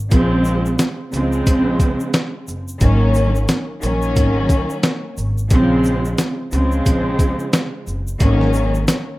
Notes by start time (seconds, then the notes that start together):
0.10 A#1 C#3 F3 G#3 C4, kick, closed hi-hat, shaker
0.45 shaker
0.46 shaker
0.66 shaker
0.79 snare, closed hi-hat, shaker
1.12 C#2 C#3 F3 G#3 C4, closed hi-hat, shaker
1.32 shaker
1.47 A#1, kick, closed hi-hat, shaker
1.80 kick, closed hi-hat, shaker
2.00 shaker
2.14 snare, closed hi-hat, shaker
2.47 F#1, shaker
2.68 shaker
2.80 G#1 D#3 F#3 A#3 C#4, kick, closed hi-hat, shaker
3.14 shaker
3.16 shaker
3.35 shaker
3.48 snare, closed hi-hat, shaker
3.80 A#1 D#3 F#3 A#3 C#4, closed hi-hat, shaker
4.02 shaker
4.16 G#1, kick, closed hi-hat, shaker
4.49 kick, closed hi-hat, shaker
4.70 shaker
4.83 snare, closed hi-hat, shaker
5.17 G#1, shaker
5.38 shaker
5.50 A#1 C#3 F3 G#3 C4, kick, closed hi-hat, shaker
5.84 shaker
6.05 shaker
6.18 snare, closed hi-hat, shaker
6.51 C#2 C#3 F3 G#3 C4, closed hi-hat, shaker
6.72 shaker
6.86 A#1, kick, closed hi-hat, shaker
7.19 kick, closed hi-hat, shaker
7.39 shaker
7.53 snare, closed hi-hat, shaker
7.87 F#1, shaker
8.07 shaker
8.19 G#1 D#3 F#3 A#3 C#4, kick, closed hi-hat, shaker
8.41 snare
8.53 shaker
8.55 shaker
8.75 shaker
8.88 snare, closed hi-hat, shaker